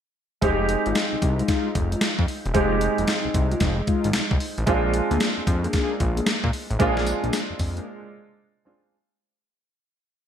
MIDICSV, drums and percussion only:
0, 0, Header, 1, 2, 480
1, 0, Start_track
1, 0, Tempo, 530973
1, 384, Time_signature, 4, 2, 24, 8
1, 9284, End_track
2, 0, Start_track
2, 0, Title_t, "Drums"
2, 381, Note_on_c, 9, 42, 70
2, 382, Note_on_c, 9, 36, 110
2, 471, Note_off_c, 9, 42, 0
2, 472, Note_off_c, 9, 36, 0
2, 621, Note_on_c, 9, 42, 75
2, 711, Note_off_c, 9, 42, 0
2, 776, Note_on_c, 9, 42, 49
2, 860, Note_off_c, 9, 42, 0
2, 860, Note_on_c, 9, 42, 67
2, 863, Note_on_c, 9, 38, 101
2, 951, Note_off_c, 9, 42, 0
2, 954, Note_off_c, 9, 38, 0
2, 1103, Note_on_c, 9, 36, 91
2, 1104, Note_on_c, 9, 42, 77
2, 1193, Note_off_c, 9, 36, 0
2, 1194, Note_off_c, 9, 42, 0
2, 1260, Note_on_c, 9, 42, 49
2, 1340, Note_off_c, 9, 42, 0
2, 1340, Note_on_c, 9, 42, 72
2, 1342, Note_on_c, 9, 36, 100
2, 1343, Note_on_c, 9, 38, 69
2, 1431, Note_off_c, 9, 42, 0
2, 1432, Note_off_c, 9, 36, 0
2, 1433, Note_off_c, 9, 38, 0
2, 1583, Note_on_c, 9, 42, 72
2, 1585, Note_on_c, 9, 36, 87
2, 1674, Note_off_c, 9, 42, 0
2, 1675, Note_off_c, 9, 36, 0
2, 1737, Note_on_c, 9, 42, 60
2, 1819, Note_off_c, 9, 42, 0
2, 1819, Note_on_c, 9, 38, 116
2, 1819, Note_on_c, 9, 42, 86
2, 1909, Note_off_c, 9, 38, 0
2, 1909, Note_off_c, 9, 42, 0
2, 1976, Note_on_c, 9, 36, 84
2, 2064, Note_on_c, 9, 46, 68
2, 2067, Note_off_c, 9, 36, 0
2, 2154, Note_off_c, 9, 46, 0
2, 2219, Note_on_c, 9, 42, 44
2, 2300, Note_off_c, 9, 42, 0
2, 2300, Note_on_c, 9, 42, 78
2, 2302, Note_on_c, 9, 36, 106
2, 2391, Note_off_c, 9, 42, 0
2, 2392, Note_off_c, 9, 36, 0
2, 2540, Note_on_c, 9, 42, 77
2, 2631, Note_off_c, 9, 42, 0
2, 2697, Note_on_c, 9, 42, 54
2, 2779, Note_off_c, 9, 42, 0
2, 2779, Note_on_c, 9, 42, 76
2, 2782, Note_on_c, 9, 38, 100
2, 2869, Note_off_c, 9, 42, 0
2, 2872, Note_off_c, 9, 38, 0
2, 3023, Note_on_c, 9, 36, 101
2, 3024, Note_on_c, 9, 42, 79
2, 3113, Note_off_c, 9, 36, 0
2, 3114, Note_off_c, 9, 42, 0
2, 3177, Note_on_c, 9, 42, 49
2, 3257, Note_off_c, 9, 42, 0
2, 3257, Note_on_c, 9, 42, 74
2, 3259, Note_on_c, 9, 38, 70
2, 3261, Note_on_c, 9, 36, 102
2, 3347, Note_off_c, 9, 42, 0
2, 3349, Note_off_c, 9, 38, 0
2, 3352, Note_off_c, 9, 36, 0
2, 3501, Note_on_c, 9, 42, 66
2, 3504, Note_on_c, 9, 36, 83
2, 3592, Note_off_c, 9, 42, 0
2, 3595, Note_off_c, 9, 36, 0
2, 3655, Note_on_c, 9, 42, 64
2, 3737, Note_off_c, 9, 42, 0
2, 3737, Note_on_c, 9, 38, 126
2, 3737, Note_on_c, 9, 42, 91
2, 3827, Note_off_c, 9, 38, 0
2, 3827, Note_off_c, 9, 42, 0
2, 3896, Note_on_c, 9, 36, 89
2, 3981, Note_on_c, 9, 46, 72
2, 3986, Note_off_c, 9, 36, 0
2, 4071, Note_off_c, 9, 46, 0
2, 4138, Note_on_c, 9, 42, 45
2, 4220, Note_off_c, 9, 42, 0
2, 4220, Note_on_c, 9, 42, 73
2, 4222, Note_on_c, 9, 36, 105
2, 4311, Note_off_c, 9, 42, 0
2, 4313, Note_off_c, 9, 36, 0
2, 4462, Note_on_c, 9, 42, 81
2, 4552, Note_off_c, 9, 42, 0
2, 4620, Note_on_c, 9, 42, 54
2, 4703, Note_off_c, 9, 42, 0
2, 4703, Note_on_c, 9, 42, 76
2, 4706, Note_on_c, 9, 38, 109
2, 4793, Note_off_c, 9, 42, 0
2, 4796, Note_off_c, 9, 38, 0
2, 4945, Note_on_c, 9, 36, 108
2, 4948, Note_on_c, 9, 42, 76
2, 5035, Note_off_c, 9, 36, 0
2, 5038, Note_off_c, 9, 42, 0
2, 5102, Note_on_c, 9, 42, 52
2, 5181, Note_off_c, 9, 42, 0
2, 5181, Note_on_c, 9, 42, 76
2, 5183, Note_on_c, 9, 38, 76
2, 5184, Note_on_c, 9, 36, 101
2, 5271, Note_off_c, 9, 42, 0
2, 5273, Note_off_c, 9, 38, 0
2, 5274, Note_off_c, 9, 36, 0
2, 5425, Note_on_c, 9, 42, 68
2, 5427, Note_on_c, 9, 36, 85
2, 5516, Note_off_c, 9, 42, 0
2, 5517, Note_off_c, 9, 36, 0
2, 5580, Note_on_c, 9, 42, 65
2, 5663, Note_off_c, 9, 42, 0
2, 5663, Note_on_c, 9, 38, 124
2, 5663, Note_on_c, 9, 42, 82
2, 5754, Note_off_c, 9, 38, 0
2, 5754, Note_off_c, 9, 42, 0
2, 5819, Note_on_c, 9, 36, 85
2, 5906, Note_on_c, 9, 46, 71
2, 5909, Note_off_c, 9, 36, 0
2, 5996, Note_off_c, 9, 46, 0
2, 6062, Note_on_c, 9, 42, 49
2, 6144, Note_on_c, 9, 36, 112
2, 6145, Note_off_c, 9, 42, 0
2, 6145, Note_on_c, 9, 42, 74
2, 6235, Note_off_c, 9, 36, 0
2, 6235, Note_off_c, 9, 42, 0
2, 6301, Note_on_c, 9, 38, 72
2, 6386, Note_on_c, 9, 42, 78
2, 6388, Note_on_c, 9, 54, 69
2, 6391, Note_off_c, 9, 38, 0
2, 6477, Note_off_c, 9, 42, 0
2, 6479, Note_off_c, 9, 54, 0
2, 6542, Note_on_c, 9, 42, 50
2, 6625, Note_off_c, 9, 42, 0
2, 6625, Note_on_c, 9, 42, 75
2, 6627, Note_on_c, 9, 54, 99
2, 6628, Note_on_c, 9, 38, 109
2, 6715, Note_off_c, 9, 42, 0
2, 6717, Note_off_c, 9, 54, 0
2, 6718, Note_off_c, 9, 38, 0
2, 6864, Note_on_c, 9, 54, 70
2, 6865, Note_on_c, 9, 36, 102
2, 6866, Note_on_c, 9, 46, 81
2, 6954, Note_off_c, 9, 54, 0
2, 6956, Note_off_c, 9, 36, 0
2, 6957, Note_off_c, 9, 46, 0
2, 7023, Note_on_c, 9, 42, 55
2, 7113, Note_off_c, 9, 42, 0
2, 9284, End_track
0, 0, End_of_file